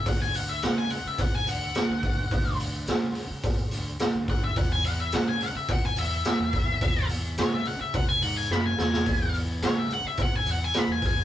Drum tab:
HH |o-o-o-o-o-o-o-o-|o-o-o-o-o-o-o-o-|o-o-o-o-o-o-o-o-|o-o-o-o-o-o-----|
SD |----o-------o---|----o-------o---|----o-------o---|----o-------o-oo|
BD |o-------o-----o-|o-------o-----o-|o-------o-----o-|o-------o-------|

HH |o-o-o-o-o-o-o-o-|
SD |----o-------o---|
BD |o-------o-----o-|